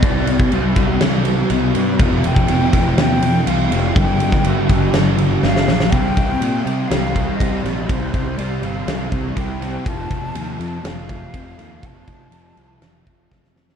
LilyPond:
<<
  \new Staff \with { instrumentName = "Flute" } { \time 4/4 \key c \dorian \tempo 4 = 122 d''4 r2. | r8 g''4. g''4 f''4 | g''4 r2 f''4 | g''4. g''8 f''4 ees''8 d''8 |
c''4 d''8 f''4 r8 g''4 | a''4. a''8 f''2 | a''2. r4 | }
  \new Staff \with { instrumentName = "Distorted electric guitar" } { \clef bass \time 4/4 \key c \dorian <c g c'>4 <c g c'>8 <g c'>4. <c g c'>8 <g c'>8 | <f, c f>4 <f, c f>8 <c f>4. <f, c f>8 <c f>8 | <g, d g>4 <g, d g>8 <d g>4. <g, d g>8 <d g>8 | <c g c'>8 <g c'>8 <c g c'>8 <g c'>8 <c g c'>8 <g c'>8 <c g c'>8 <g c'>8 |
<c g c'>8 <g c'>8 <c g c'>8 <g c'>8 <c g c'>8 <g c'>8 <c g c'>8 <g c'>8 | <f, c f>8 <c f>8 <f, c f>8 <c f>8 <f, c f>8 <c f>8 <f, c f>8 <c f>8 | <f, c f>8 <c f>8 <f, c f>8 <c f>8 <f, c f>8 <c f>8 <f, c f>8 <c f>8 | }
  \new Staff \with { instrumentName = "Picked electric bass" } { \clef bass \time 4/4 \key c \dorian c,4 c,8 c,8 c,4 c,8 g,8 | f,,8 f,,8 f,,8 f,,8 ees,8 f,8 c,8 f,,8 | g,,4 g,,8 g,,8 g,,4 g,,8 bes,,8 | c,8 c,8 bes,8 c8 c,4 c,8 bes,,8 |
c,8 c,8 c,8 g,,8 c,8 c,8 c,4 | f,,8 f,,8 ees,8 f,8 f,,4 f,,8 ees,8 | f,,8 f,,8 f,,8 c,8 f,,8 f,,8 f,,4 | }
  \new DrumStaff \with { instrumentName = "Drums" } \drummode { \time 4/4 <bd cymr>8 cymr16 bd16 cymr8 <bd cymr>8 <cymr sn>8 cymr8 cymr8 cymr8 | <bd cymr>8 cymr16 bd16 cymr8 <bd cymr>8 <cymr sn>8 cymr8 cymr8 cymr8 | <bd cymr>8 cymr16 <bd sn>16 cymr8 <bd cymr>8 <cymr sn>8 cymr8 sn16 sn16 sn16 sn16 | <bd cymr>8 <bd cymr>8 cymr8 cymr8 <cymr sn>8 <bd cymr>8 <bd cymr>8 <cymr sn>8 |
<bd cymr>8 <bd cymr>8 cymr8 cymr8 <cymr sn>8 <bd cymr>8 <bd cymr>8 <cymr sn>8 | <bd cymr>8 <bd cymr>8 cymr8 cymr8 <cymr sn>8 <bd cymr>8 <bd cymr>8 <cymr sn>8 | <bd cymr>8 <bd cymr>8 cymr8 cymr8 <cymr sn>8 <bd cymr>8 <bd sn>16 sn16 sn16 sn16 | }
>>